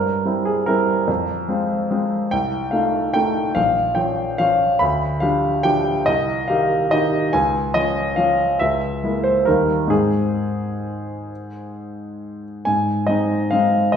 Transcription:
grand piano
Already playing: G2 A#4
0.25 G3 C4 E4
0.45 G#4
0.66 G3 C4 E4 A#4
1.08 F2
1.48 G#3 C4 F4
1.90 G#3 C4 F4
2.31 C2 G5
2.71 A3 D#4 F4 F5
3.14 A3 D#4 F4 G5
3.55 A#1 F5
3.95 F3 C#4 F4 G5
4.38 F3 C#4 F4 F5
4.79 D2 B5
5.20 F3 D4 G4 F5
5.63 F3 D4 G4 G5
6.06 C2 D#5
6.48 D#3 D#4 G4 F5
6.91 D#3 D#4 G4 D#5
7.33 C#2 G#5
7.74 F3 C#4 F4 D#5
8.16 F3 C#4 F4 F5
8.59 C#2 E5
9.04 G#3 A#3 E4
9.24 C5
9.45 D#2 G3 A#3 D#4 A#4
9.87 G#2 G#3 C4 D#4 G#4
12.65 G#2 G#5
13.07 G#3 C4 D#4 D#5
13.51 G#3 C4 D#4 F5
13.92 D#2 D#5

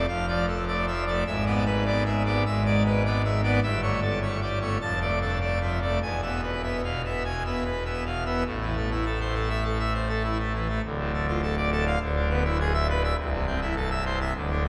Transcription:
pipe organ
0.08 F1 F2 F5
0.28 F3 D5
0.47 A4
0.68 A3 D5
0.87 F3 E5
1.07 A3 D5
1.26 G#1 G#2 E5
1.46 B3 D5
1.66 B4
1.85 B3 D5
2.05 G#3 E5
2.25 B3 D5
2.46 G#1 G#2 E5
2.66 G#3 D5
2.86 B4
3.05 B3 D5
3.24 G#3 E5
3.43 B3 D5
3.63 G1 G2 E5
3.82 A3 C#5
4.02 A4
4.22 A3 C#5
4.41 G3 D5
4.61 A3 C#5
4.81 F1 F2 A5
5.01 A3 D5
5.21 D4 A4
5.41 A3 D5
5.61 F3 E5
5.81 A3 D5
6.02 E1 E2 G#5
6.22 B3 E5
6.43 B4
6.63 B3 E5
6.84 B2 F5
7.05 B3 E5
7.24 B2 G#5
7.45 B3 E5
7.65 B4
7.85 B3 E5
8.06 B2 F5
8.25 B3 E5
8.46 A1 A2
8.61 E3
8.76 A3
8.91 E4
9.06 A4
9.21 C5
9.35 A4
9.50 E5
9.64 A4
9.79 E5
9.94 C5
10.09 A4
10.24 E4
10.39 A3
10.54 E3
10.69 A3
10.84 D1 D2
10.99 A2
11.13 A3
11.28 F4
11.43 A4
11.57 D5
11.72 A4
11.87 F5
12.00 D1 D2
12.16 D3
12.30 B3
12.45 E4
12.60 G#4
12.74 E5
12.89 B4
13.04 E5
13.18 C1 C2
13.33 C3
13.47 C4
13.61 E4
13.76 A4
13.91 E5
14.06 C5
14.21 E5
14.35 D1 D2
14.50 D3

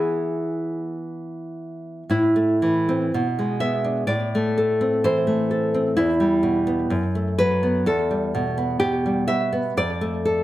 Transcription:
nylon-string guitar
Already playing: E3 B3 E4 G#4
2.10 A2 E4
2.36 A3
2.62 E3
2.89 C4
3.14 B2
3.39 G#3
3.60 B3 E5
3.84 D4
4.07 A2 D5
4.35 A3
4.58 A4
4.81 C4
5.04 E3 C5
5.27 A3
5.51 A4
5.74 C4
5.97 E2 E4
6.20 G3
6.43 B2
6.67 B3
6.90 F#2
7.15 A3
7.38 F#3 B4
7.63 B3
7.86 E2 A4
8.11 G3
8.35 B2
8.58 B3
8.80 B2 G4
9.06 G3
9.28 B2 E5
9.53 B3
9.77 F2 D5
10.01 A3
10.25 A4

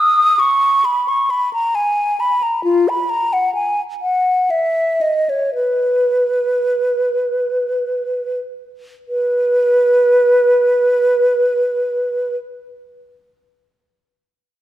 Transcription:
flute
0.00 D#6
0.39 C#6
0.85 B5
1.08 C#6
1.30 B5
1.53 A#5
1.75 G#5
2.20 B5
2.43 A#5
2.64 F4
2.89 B5
3.09 A#5
3.33 F#5
3.55 G#5
4.01 F#5
4.50 E5
5.01 D#5
5.29 C#5
5.55 B4
9.08 B4

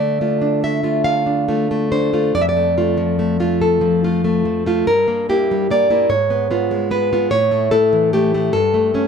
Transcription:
nylon-string guitar
Already playing: D3 A3 D5
0.21 A3 F4
0.42 D4
0.64 A3 E5
0.83 A3 F4
1.04 F5
1.26 D4
1.48 A3 F4
1.71 A3
1.92 D4 C5
2.13 A3 F4
2.35 F2 D5
2.41 E5
2.49 D5
2.57 A3
2.78 A3 F4
2.98 F3
3.19 A3
3.40 A3 F4
3.62 A4
3.81 F3
4.04 A3 F4
4.24 A3
4.45 F3
4.66 A3 F4
4.87 G2 A#4
5.08 A#3
5.29 A#3 E4 G4
5.51 G3
5.71 A#3 D5
5.90 A#3 E4
6.09 G#2 C#5
6.30 B3
6.51 B3 F4
6.71 G#3
6.91 B3 B4
7.13 B3 F4
7.31 A2 C#5
7.51 A3
7.71 A3 E4 A4
7.93 E3
8.13 A3 G4
8.34 A3 E4
8.53 G2 A4
8.74 A3
8.94 A3 C#4

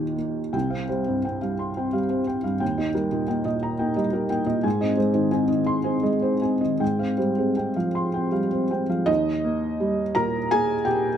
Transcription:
felt piano
Already playing: D#2 A#2 D#3 A#3 G4 G5
0.16 A#3
0.53 C2 G5
0.70 C4 F5
0.89 G3 C5
1.07 G2 C4
1.24 C4 G5
1.42 G2 F5
1.59 C6
1.77 C4 G5
1.93 G3 F5
2.09 C4 C5
2.27 C4 G5
2.44 G2 F5
2.60 D#2 G5
2.78 A#3 D#4 D#5
2.94 G3 A#4
3.11 A#2 A#3 D#4
3.28 A#3 D#4 G5
3.45 A#2 D#5
3.63 A#5
3.79 A#3 D#4 G5
3.96 G3 D#5
4.13 A#3 D#4 A#4
4.30 A#3 D#4 G5
4.46 A#2 D#5
4.63 G#2 G#5
4.81 C4 D#4 D#5
4.97 G#3 C5
5.13 D#3 C4 D#4
5.31 C4 D#4 G#5
5.48 D#3 D#5
5.66 C6
5.84 C4 D#4 G#5
6.03 G#3 D#5
6.22 C4 D#4 C5
6.42 C4 D#4 G#5
6.61 D#3 D#5
6.80 G#2 G5
6.99 C4 F5
7.17 G3 C5
7.38 G#3 C4
7.57 C4 G5
7.76 F3 F5
7.95 C6
8.14 C4 G5
8.32 G3 F5
8.52 C4 C5
8.71 C4 G5
8.89 F3 F5
9.06 D#2 D#4 D#5
9.44 A#3
9.80 G3
10.15 A#2 A#4 A#5
10.51 A#3 G#4 G#5
10.85 A#2 G4 G5

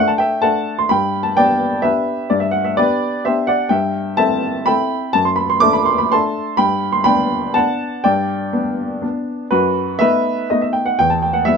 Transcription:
upright piano
Already playing: A3 D4 A4
0.08 A5
0.18 E5 G5
0.42 A3 D4 A4 F#5 A5
0.79 C6
0.89 G2 G5 B5
1.23 A5
1.37 B3 D4 G4 D5 G5
1.82 B3 D4 G4 B4 E5
2.30 G2 D5
2.40 E5
2.51 F#5
2.65 E5
2.77 B3 D4 G4 B4 D5
3.25 B3 D4 G4 C5 E5
3.47 D5 F#5
3.69 G2 E5 G5
4.17 C4 E4 A4 E5 A5
4.66 C4 E4 A4 G5 B5
5.13 F#2 A5
5.25 C6
5.36 B5
5.50 C6
5.60 A3 D4 A4 D6
5.73 B5
5.86 C6
5.98 B5
6.12 A3 D4 A4 A5 C6
6.57 G2 G5 B5
6.92 C6
7.04 B3 D4 G5 B5
7.54 B3 D4 F#5 A5
8.04 G2 D5 G5
8.53 B3 D4
9.02 B3 D4
9.51 F#2 F#4 B4
9.99 A3 B3 D#4 B4 E5
10.50 A3 B3 D#4 D#5
10.61 E5
10.73 G5
10.86 F#5
10.99 E2 G5
11.10 A5
11.22 G5
11.33 F#5
11.45 G3 B3 E4 E5

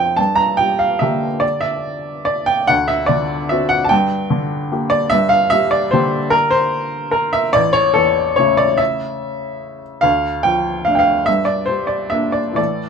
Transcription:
upright piano
Already playing: F2 F3 C4 A4 F5 G5
0.16 G2 A5
0.36 A#5
0.57 G3 G5
0.79 F5
0.99 D3 A#3 G4 E5
1.40 D5
1.61 E5
2.25 D5
2.46 G5
2.67 D2 F#5
2.88 E5
3.06 D3 D5
3.49 C4 F#4 E5
3.69 F#5
3.84 A5
3.89 G2 G5
4.30 D3
4.72 A#3 G4
4.90 D5
5.10 G2 E5
5.29 F5
5.50 G3 E5
5.71 D5
5.91 D3 A#3 G4 C5
6.30 A#4
6.51 C5
7.11 A#4
7.33 E5
7.53 A1 D5
7.73 C#5
7.94 E2 A4
8.36 C#3 A3 E4 C#5
8.57 D5
8.78 E5
10.01 D2 F5
10.43 F3 G5
10.85 A3 D4 F5
10.95 F5 G5
11.26 G2 E5
11.45 D5
11.66 G3 C5
11.87 D5
12.10 A#3 D4 E5
12.32 D5
12.53 A2 E3 A3 D5
12.57 A4

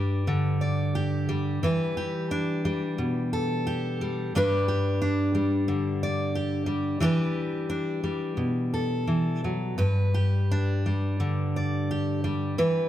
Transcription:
steel-string acoustic guitar
Already playing: G2 G3 D4 G4 B4
0.27 D3
0.61 D5
0.95 G4
1.29 G3
1.63 E3 B4
1.97 G4
2.31 D4
2.65 G3
2.98 B2
3.33 A4
3.67 G4
4.01 G3
4.35 G2 G3 D4 G4 B4
4.68 G4
5.01 D4
5.35 G3
5.68 D3
6.03 D5
6.35 G4
6.66 G3
7.00 E3 G3 D4 G4 B4
7.70 D4
8.04 G3
8.37 B2
8.74 A4
9.07 E3
9.44 F#3
9.78 G2 B4
10.14 G4
10.51 D4
10.86 G3
11.20 D3
11.56 D5
11.91 G4
12.24 G3
12.58 E3 B4

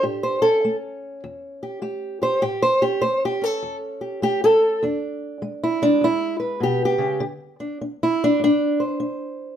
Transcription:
steel-string acoustic guitar
0.03 A2 G4
0.23 C5
0.42 C#4 A4
0.65 A3
1.24 E2
1.63 G4
1.82 A3 G4
2.22 G4 C5
2.42 A2 G4
2.62 C5
2.82 C#4 G4
3.02 A3 C5
3.25 G4
3.42 C#4 A4
3.62 E2
4.01 G4
4.22 A3 G4
4.44 A4
4.83 E2 D4
5.42 G#3
5.64 E4
5.82 G#3 D4
6.01 E2 E4
6.40 B4
6.60 B2 G4
6.85 G4
6.98 C#3
7.20 D3
7.60 D4
7.81 D4
8.03 E4
8.24 D4
8.40 A2
8.44 D4
8.80 C5
9.00 D4

